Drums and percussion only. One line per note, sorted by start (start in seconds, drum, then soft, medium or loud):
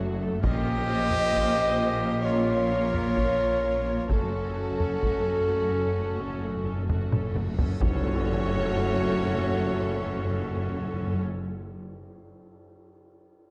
0.44 taiko loud
1.11 taiko low-mid medium
1.33 taiko medium
2.94 taiko low-mid medium
3.16 taiko medium
4.09 taiko loud
4.80 taiko low-mid medium
5.03 taiko medium
6.66 taiko low-mid medium
6.89 taiko low-mid loud
7.12 taiko mid medium
7.36 taiko low-mid loud
7.59 taiko low medium
7.81 taiko loud
7.81 tam-tam medium